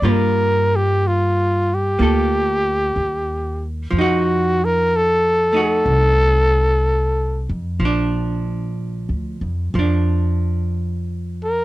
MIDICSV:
0, 0, Header, 1, 4, 480
1, 0, Start_track
1, 0, Key_signature, -2, "minor"
1, 0, Tempo, 972447
1, 16, Time_signature, 4, 2, 24, 8
1, 5748, End_track
2, 0, Start_track
2, 0, Title_t, "Trumpet"
2, 0, Program_c, 0, 56
2, 0, Note_on_c, 0, 74, 60
2, 48, Note_on_c, 0, 70, 74
2, 55, Note_off_c, 0, 74, 0
2, 373, Note_on_c, 0, 67, 71
2, 381, Note_off_c, 0, 70, 0
2, 530, Note_on_c, 0, 65, 72
2, 538, Note_off_c, 0, 67, 0
2, 861, Note_on_c, 0, 67, 70
2, 868, Note_off_c, 0, 65, 0
2, 1807, Note_off_c, 0, 67, 0
2, 1966, Note_on_c, 0, 66, 74
2, 2294, Note_on_c, 0, 70, 84
2, 2301, Note_off_c, 0, 66, 0
2, 2449, Note_on_c, 0, 69, 83
2, 2457, Note_off_c, 0, 70, 0
2, 2764, Note_off_c, 0, 69, 0
2, 2780, Note_on_c, 0, 69, 88
2, 3698, Note_off_c, 0, 69, 0
2, 5644, Note_on_c, 0, 70, 75
2, 5748, Note_off_c, 0, 70, 0
2, 5748, End_track
3, 0, Start_track
3, 0, Title_t, "Hollow-body jazz guitar"
3, 0, Program_c, 1, 26
3, 17, Note_on_c, 1, 55, 47
3, 22, Note_on_c, 1, 58, 38
3, 23, Note_on_c, 1, 65, 48
3, 976, Note_off_c, 1, 58, 0
3, 982, Note_on_c, 1, 58, 36
3, 986, Note_off_c, 1, 65, 0
3, 992, Note_on_c, 1, 65, 34
3, 999, Note_on_c, 1, 69, 41
3, 1926, Note_off_c, 1, 55, 0
3, 1928, Note_on_c, 1, 53, 47
3, 1940, Note_off_c, 1, 58, 0
3, 1945, Note_off_c, 1, 65, 0
3, 1949, Note_off_c, 1, 69, 0
3, 1966, Note_on_c, 1, 63, 48
3, 1979, Note_on_c, 1, 66, 59
3, 2728, Note_on_c, 1, 57, 31
3, 2730, Note_off_c, 1, 63, 0
3, 2736, Note_on_c, 1, 63, 33
3, 2740, Note_off_c, 1, 66, 0
3, 2746, Note_on_c, 1, 66, 42
3, 3843, Note_off_c, 1, 53, 0
3, 3847, Note_off_c, 1, 57, 0
3, 3849, Note_on_c, 1, 53, 45
3, 3851, Note_off_c, 1, 63, 0
3, 3856, Note_off_c, 1, 66, 0
3, 3875, Note_on_c, 1, 62, 58
3, 4807, Note_off_c, 1, 53, 0
3, 4813, Note_on_c, 1, 53, 39
3, 4826, Note_off_c, 1, 62, 0
3, 4832, Note_on_c, 1, 62, 40
3, 5748, Note_off_c, 1, 53, 0
3, 5748, Note_off_c, 1, 62, 0
3, 5748, End_track
4, 0, Start_track
4, 0, Title_t, "Upright bass"
4, 0, Program_c, 2, 32
4, 11, Note_on_c, 2, 43, 66
4, 961, Note_off_c, 2, 43, 0
4, 985, Note_on_c, 2, 38, 73
4, 1445, Note_off_c, 2, 38, 0
4, 1461, Note_on_c, 2, 39, 62
4, 1919, Note_off_c, 2, 39, 0
4, 1937, Note_on_c, 2, 41, 71
4, 2875, Note_off_c, 2, 41, 0
4, 2890, Note_on_c, 2, 36, 76
4, 3679, Note_off_c, 2, 36, 0
4, 3699, Note_on_c, 2, 41, 67
4, 3839, Note_off_c, 2, 41, 0
4, 3847, Note_on_c, 2, 34, 69
4, 4470, Note_off_c, 2, 34, 0
4, 4487, Note_on_c, 2, 38, 57
4, 4638, Note_off_c, 2, 38, 0
4, 4646, Note_on_c, 2, 41, 62
4, 4798, Note_off_c, 2, 41, 0
4, 4807, Note_on_c, 2, 41, 81
4, 5748, Note_off_c, 2, 41, 0
4, 5748, End_track
0, 0, End_of_file